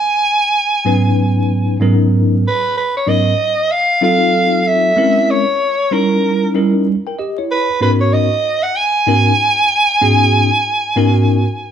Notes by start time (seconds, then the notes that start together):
Already playing: G#5
0.85 G#2 F#3 B3 C#4 D#4 B4
1.80 G#2 F#3 B3 C#4 D#4 A#4
2.48 B4
2.77 B4
2.97 C#5
3.06 G#2 F#3 B3 C#4 D#4 A#4 D#5
3.72 F5
4.01 F#3 C4 D#4 F4 A4 F5
4.67 E5
4.96 G#3 C4 C#4 E4 A#4
5.31 C#5
5.91 G3 C#4 D#4 E4 A#4
6.54 G3 C#4 D#4 E4 A#4
7.07 A#4 G5
7.19 G4 D#5
7.38 E4 C#5
7.51 B4
7.81 G#2 B3 C#4 D#4 F#4 A#4 B4
8.01 C#5
8.13 D#5
8.63 F#5
8.76 G#5
9.07 G#2 B3 C#4 D#4 F#4 A#4
10.01 G#2 B3 C#4 D#4 F#4 G#4
10.96 G#2 B3 C#4 D#4 F#4 A#4